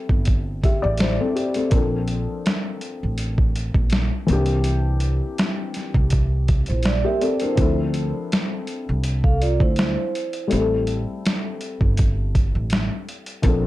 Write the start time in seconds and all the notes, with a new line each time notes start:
Already playing: G3 A3 C4 E4 A4
0.09 G1, kick
0.25 kick, closed hi-hat
0.64 G4 E5, kick, closed hi-hat
0.82 A1 D5
0.98 E4 C5, snare, closed hi-hat
1.20 C4 A4
1.36 G4, closed hi-hat
1.54 C4 A4, closed hi-hat
1.70 A#1 F3 A#3 C4, kick, closed hi-hat
1.74 D4 A4
2.08 closed hi-hat
2.46 snare, closed hi-hat
2.81 closed hi-hat
3.03 A1
3.18 closed hi-hat
3.38 kick
3.56 closed hi-hat
3.74 A#1, kick
3.90 snare, closed hi-hat
4.26 C2 E3 A#3 C4, closed hi-hat
4.31 D4 G4
4.46 closed hi-hat
4.64 closed hi-hat
5.00 closed hi-hat
5.38 snare, closed hi-hat
5.74 snare, closed hi-hat
5.94 C2, kick
6.10 kick, closed hi-hat
6.48 kick, closed hi-hat
6.66 A#1 E4 C5, closed hi-hat
6.83 D5, snare, closed hi-hat
7.05 A#3 G4 E5
7.21 C4 A4 D5, closed hi-hat
7.40 D4 E4 A#4 C5, closed hi-hat
7.55 D2 F3 C4 D4, kick, closed hi-hat
7.60 E4 A4
7.94 closed hi-hat
8.32 snare, closed hi-hat
8.67 closed hi-hat
8.89 C2
9.04 closed hi-hat
9.24 A4 F5, kick
9.42 F4 D5, closed hi-hat
9.60 D2 E4 C5, kick
9.76 snare, closed hi-hat
10.15 closed hi-hat
10.33 closed hi-hat
10.47 G3 A3 C4, closed hi-hat
10.52 A1 E4 G4
10.60 A4
10.87 closed hi-hat
11.26 snare, closed hi-hat
11.61 closed hi-hat
11.81 G1, kick
11.97 kick, closed hi-hat
12.35 kick, closed hi-hat
12.55 A1
12.70 snare, closed hi-hat
13.09 closed hi-hat
13.26 closed hi-hat
13.42 A#1 F3 A#3 C4, kick, closed hi-hat
13.46 D4 A4